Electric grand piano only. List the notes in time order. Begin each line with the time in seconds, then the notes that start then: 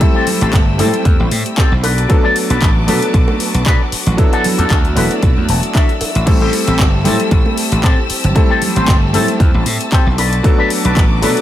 0.00 G3 A3 C4 E4 A4
0.78 G3 A3 C4 E4 A4
2.09 F#3 A3 B3 D4 A4
2.87 F#3 A3 B3 D4 A4
4.17 F#3 B3 D4 E4 A4
4.95 F#3 B3 D4 E4 A4
6.26 G3 A3 C4 E4 A4
7.04 G3 A3 C4 E4 A4
8.35 G3 A3 C4 E4 A4
9.13 G3 A3 C4 E4 A4
10.43 F#3 A3 B3 D4 A4
11.22 F#3 A3 B3 D4 A4